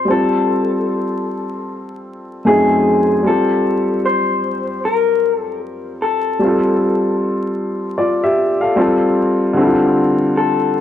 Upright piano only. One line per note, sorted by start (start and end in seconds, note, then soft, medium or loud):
0.05 2.40 G3 medium
0.05 2.41 C4 medium
0.10 2.42 F4 soft
0.10 2.44 A4 medium
2.45 3.24 F#2 medium
2.45 3.24 A3 medium
2.45 3.24 C4 medium
2.45 3.25 D#4 medium
2.45 3.26 G#4 medium
3.23 6.35 G3 medium
3.23 6.36 C4 medium
3.27 6.38 F4 medium
3.27 6.39 G4 medium
6.39 8.72 G3 medium
6.39 8.74 C4 medium
6.44 7.97 F4 medium
6.44 7.98 A4 medium
7.98 8.19 F4 soft
7.98 8.19 D5 medium
8.23 8.59 G4 medium
8.23 8.59 E5 medium
8.61 8.78 A4 medium
8.61 8.98 F5 medium
8.76 9.54 G3 medium
8.76 9.55 C4 medium
8.76 9.56 F4 medium
8.76 9.57 A4 medium
9.53 10.81 D3 medium
9.53 10.81 G3 medium
9.53 10.81 C4 medium
9.59 9.65 E4 medium
9.59 10.81 A4 medium
9.66 10.81 F4 medium